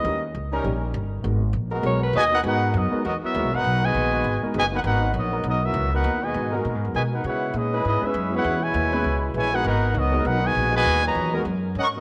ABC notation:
X:1
M:4/4
L:1/16
Q:"Swing" 1/4=200
K:G#m
V:1 name="Alto saxophone"
d2 z12 z2 | z8 c2 B2 d3 z | z16 | z16 |
z16 | z16 | z16 | z16 |
z16 | z16 |]
V:2 name="Trumpet section"
z16 | z12 [FBdg]2 [DABf]2 | [DABf]4 [B,FAd]4 [B,FAd]2 [B,FAe]4 [DABf]2- | [DABf]2 [FBdg]8 z2 [FBdg]2 [DABf]2 |
[DABf]4 [B,FAd]4 [B,FAd]2 [B,FAe]4 [DABf]2- | [DABf]2 [FBdg]4 z6 [FBdg]2 [DABf]2 | [EBcf]4 [CGBd]4 [B,EGd]2 [CGBe]4 [EBcf]2- | [EBcf]2 [EBcg]8 z2 [EBcg]2 [DGBf]2 |
[DABf]4 [B,FAd]4 [DABf]2 [FBdg]4 [FBdg]2- | [FBdg]2 [FBda]4 z6 [Adfc']2 z2 |]
V:3 name="Grand piano"
[=G,A,CDA]2 z6 [G,A,CDA]2 z6 | [G,B,DFA]2 z6 [G,B,DFA]2 z6 | z6 [G,B,DFA]2 z4 [G,B,DFc]2 z2 | z8 z2 [G,B,DFA]2 z4 |
z16 | z6 [G,B,DFA]6 [G,B,DFA]2 z2 | z8 z2 [G,B,CEB]6 | [G,B,CEB]2 z4 [G,B,CEB]2 z6 [G,B,DFA]2 |
z6 [G,B,DFA]2 z8 | z6 [G,B,DFA]2 z8 |]
V:4 name="Trombone section"
z6 [=G,CDA]6 z4 | z6 [G,B,FA]6 z4 | [G,B,FG]6 z6 [G,B,FA]2 z2 | z6 [G,B,FB]6 z4 |
z6 [G,B,FA]6 z4 | z6 [G,B,FA]6 z4 | z6 [G,CEB]6 z4 | z6 [G,CEB]6 z4 |
z6 [G,B,FA]6 z4 | z6 [G,B,FA]2 z8 |]
V:5 name="Trombone section"
z16 | z12 [B,,D,G,]2 [B,DF]2 | [B,DF]4 [F,B,D]4 [F,B,D]2 [F,B,E]4 [B,DF]2- | [B,DF]2 [D,G,B,]8 z2 [B,,D,G,]2 [B,DF]2 |
[B,DF]4 [F,B,D]4 [F,B,D]2 [F,B,E]4 [B,DF]2- | [B,DF]2 [B,,D,G,]4 z6 [B,,D,G,]2 [B,DF]2 | [G,B,F]4 [G,CD]4 D2 [G,B,E]4 [G,B,F]2- | [G,B,F]2 [B,,G,E]8 z2 [B,,E,G,]2 F2 |
[B,DF]4 [F,B,D]4 [B,DF]2 [B,,D,G,]4 [B,,D,G,]2- | [B,,D,G,]2 [A,,D,F,]4 z6 C2 [D,F,B,]2 |]
V:6 name="Upright bass" clef=bass
D,,4 C,,4 A,,,4 =G,,,4 | G,,,4 A,,,4 B,,,4 D,,4 | G,,4 F,,2 z2 E,,2 z2 (3D,,2 B,,,2 G,,,2 | B,,,4 A,,,4 G,,,2 z2 F,,,4 |
G,,,4 A,,,4 B,,,4 C,,4 | D,,4 G,,4 (3A,,2 G,,2 F,,2 B,,4 | C,4 A,,4 G,,2 z2 F,,4 | E,,4 D,,4 C,,4 A,,,4 |
G,,,4 C,,4 B,,,4 A,,,4 | D,,4 E,,4 F,,4 G,,4 |]